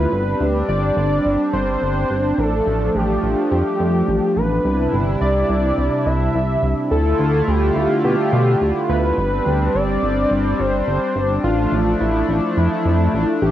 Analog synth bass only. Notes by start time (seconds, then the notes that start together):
0.12 G1
0.40 D2
0.69 G1
0.97 G1
1.25 G1
1.53 G1
1.82 G1
2.10 G1
2.38 A1
2.67 A1
2.95 A1
3.23 A1
3.51 F2
3.80 F2
4.08 A1
4.36 A1
4.65 C2
4.93 G1
5.21 C2
5.50 C2
5.78 C2
6.06 C2
6.34 C2
6.63 C2
6.91 D2
7.19 D2
7.48 D2
7.76 D2
8.04 B2
8.33 B2
8.61 D2
8.89 D2
9.18 G1
9.46 D2
9.74 G1
10.03 G1
10.31 G1
10.59 G1
10.87 G1
11.16 G1
11.44 A1
11.72 A1
12.01 A1
12.29 A1
12.57 F2
12.85 F2
13.14 A1
13.42 A1